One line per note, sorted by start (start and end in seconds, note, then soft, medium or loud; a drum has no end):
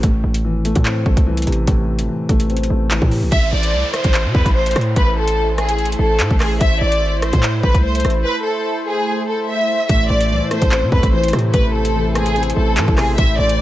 0.03 0.23 A1 loud
0.03 1.06 A2 medium
0.03 kick loud
0.03 closed hi-hat loud
0.24 0.46 A1 loud
0.34 closed hi-hat medium
0.44 0.61 G#1 loud
0.44 1.25 E3 medium
0.60 0.75 A1 loud
0.65 1.04 A3 loud
0.65 closed hi-hat medium
0.75 1.05 A2 loud
0.75 kick medium
0.75 closed hi-hat medium
0.85 1.88 C4 medium
0.85 clap loud
1.06 1.16 A1 loud
1.06 2.09 A3 medium
1.06 kick medium
1.17 1.46 C2 loud
1.17 kick loud
1.17 closed hi-hat medium
1.27 2.07 E3 loud
1.37 closed hi-hat medium
1.42 closed hi-hat medium
1.47 1.67 A1 loud
1.47 2.50 C3 medium
1.47 closed hi-hat medium
1.52 closed hi-hat soft
1.67 2.01 A1 loud
1.67 2.70 A2 medium
1.67 kick loud
1.67 closed hi-hat loud
1.99 2.08 G#1 loud
1.99 closed hi-hat medium
2.08 2.89 E3 medium
2.29 2.69 A1 loud
2.29 2.69 A3 medium
2.29 kick loud
2.29 closed hi-hat medium
2.40 closed hi-hat medium
2.50 3.32 C4 medium
2.50 closed hi-hat soft
2.57 closed hi-hat medium
2.63 closed hi-hat medium
2.70 3.00 A1 loud
2.70 3.32 A3 medium
2.91 3.32 E3 loud
2.91 clap loud
2.91 closed hi-hat medium
3.02 3.24 A2 loud
3.02 kick medium
3.11 3.32 C3 medium
3.11 open hi-hat medium
3.22 3.31 B1 loud
3.31 3.52 A1 loud
3.31 13.14 A3 medium
3.31 9.86 E4 medium
3.31 13.14 C5 medium
3.31 3.48 E5 loud
3.31 kick loud
3.31 closed hi-hat loud
3.31 downlifter medium
3.52 3.75 A1 loud
3.52 3.91 D5 medium
3.63 closed hi-hat medium
3.73 3.83 C2 loud
3.94 4.32 C5 medium
3.94 cross-stick loud
3.94 closed hi-hat medium
4.04 4.27 A1 loud
4.04 kick medium
4.04 closed hi-hat medium
4.14 clap loud
4.25 4.34 C3 loud
4.35 4.45 E2 loud
4.35 4.51 B4 medium
4.35 kick medium
4.46 4.75 A1 loud
4.46 kick loud
4.46 closed hi-hat medium
4.55 4.72 C5 medium
4.66 closed hi-hat medium
4.71 closed hi-hat medium
4.76 4.95 A2 loud
4.76 cross-stick loud
4.76 closed hi-hat medium
4.81 closed hi-hat soft
4.96 5.95 A1 loud
4.96 5.13 B4 loud
4.96 kick loud
4.96 closed hi-hat loud
5.17 5.56 A4 medium
5.28 closed hi-hat medium
5.58 5.97 G#4 medium
5.58 cross-stick loud
5.58 closed hi-hat medium
5.69 closed hi-hat medium
5.79 closed hi-hat soft
5.85 closed hi-hat medium
5.92 closed hi-hat medium
5.99 6.21 A1 loud
5.99 6.38 A4 medium
6.20 6.30 A2 loud
6.20 clap loud
6.20 closed hi-hat medium
6.31 6.60 A1 loud
6.31 kick loud
6.40 6.57 G#4 medium
6.40 cross-stick loud
6.40 clap medium
6.40 open hi-hat medium
6.60 6.80 A1 loud
6.60 6.77 E5 loud
6.60 kick loud
6.60 closed hi-hat loud
6.81 7.03 A1 loud
6.81 7.20 D5 medium
6.92 closed hi-hat medium
7.02 7.19 G#1 loud
7.18 7.32 A1 loud
7.22 7.61 C5 medium
7.22 cross-stick loud
7.22 closed hi-hat medium
7.33 7.62 A2 loud
7.33 kick loud
7.33 closed hi-hat medium
7.43 clap loud
7.63 7.74 A1 loud
7.63 7.80 B4 medium
7.63 kick medium
7.74 8.03 C2 loud
7.74 kick loud
7.74 closed hi-hat medium
7.84 8.01 C5 medium
7.95 closed hi-hat medium
8.00 closed hi-hat medium
8.05 8.24 A1 loud
8.05 cross-stick medium
8.05 closed hi-hat medium
8.10 closed hi-hat soft
8.25 8.41 B4 loud
8.45 8.84 A4 medium
8.87 9.25 G#4 medium
9.28 9.44 A4 medium
9.48 9.87 E5 medium
9.89 10.09 A1 loud
9.89 10.92 A2 medium
9.89 13.62 E4 medium
9.89 10.06 E5 loud
9.89 kick loud
9.89 closed hi-hat loud
10.10 10.32 A1 loud
10.10 10.49 D5 medium
10.21 closed hi-hat medium
10.30 10.41 C2 loud
10.30 11.11 E3 medium
10.51 10.91 A3 medium
10.51 10.90 C5 medium
10.51 cross-stick medium
10.51 closed hi-hat medium
10.62 10.84 A1 loud
10.62 kick medium
10.62 closed hi-hat medium
10.72 11.74 C4 medium
10.72 clap loud
10.83 10.91 C3 medium
10.92 11.03 E2 loud
10.92 11.95 A3 medium
10.92 11.09 B4 medium
10.92 kick medium
11.03 11.32 A1 loud
11.03 kick loud
11.03 closed hi-hat medium
11.13 11.93 E3 loud
11.13 11.29 C5 medium
11.24 closed hi-hat medium
11.28 closed hi-hat medium
11.33 11.53 A2 loud
11.33 12.36 C3 medium
11.33 cross-stick loud
11.33 closed hi-hat medium
11.39 closed hi-hat soft
11.54 12.53 A1 loud
11.54 12.57 A2 medium
11.54 11.70 B4 loud
11.54 kick loud
11.54 closed hi-hat loud
11.75 12.13 A4 medium
11.85 closed hi-hat medium
11.95 12.76 E3 medium
12.15 12.55 A3 loud
12.15 12.54 G#4 medium
12.15 cross-stick loud
12.15 closed hi-hat medium
12.26 closed hi-hat medium
12.36 13.18 C4 medium
12.36 closed hi-hat soft
12.43 closed hi-hat medium
12.50 closed hi-hat medium
12.56 12.79 A1 loud
12.56 13.18 A3 medium
12.56 12.95 A4 medium
12.77 12.87 A2 loud
12.77 13.18 E3 loud
12.77 clap loud
12.77 closed hi-hat medium
12.88 13.17 A1 loud
12.88 kick loud
12.97 13.18 C3 medium
12.97 13.14 G#4 medium
12.97 cross-stick loud
12.97 clap medium
12.97 open hi-hat medium
13.18 13.38 A1 loud
13.18 13.62 A2 medium
13.18 13.62 A3 medium
13.18 13.62 C5 medium
13.18 13.35 E5 loud
13.18 kick loud
13.18 closed hi-hat loud
13.39 13.61 A1 loud
13.39 13.62 D5 medium
13.49 closed hi-hat medium